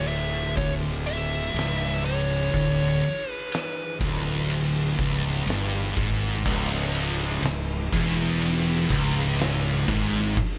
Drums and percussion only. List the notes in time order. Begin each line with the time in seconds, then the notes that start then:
0.08 ride
0.57 kick, ride
1.07 ride
1.56 snare, ride
2.05 ride
2.54 kick, ride
3.04 ride
3.52 snare, ride
4.01 kick, ride
4.50 ride
4.99 kick, ride
5.47 snare, ride
5.97 kick, ride
6.46 kick, crash
6.95 ride
7.43 snare, ride
7.92 kick, ride
8.42 ride
8.90 kick, ride
9.39 snare, ride
9.67 snare
9.88 kick, ride
10.37 kick, ride